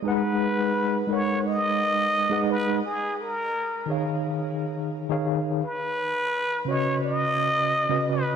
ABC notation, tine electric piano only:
X:1
M:4/4
L:1/16
Q:1/4=86
K:G#dor
V:1 name="Tine electric piano"
[G,DGBf]6 [G,DABf]6- [G,DABf] [G,DGBf]3 | z6 [D,DGce]6- [D,DGce] [D,DGce]3 | z6 [C,CFBd]6- [C,CFBd] [C,CFBd]3 |]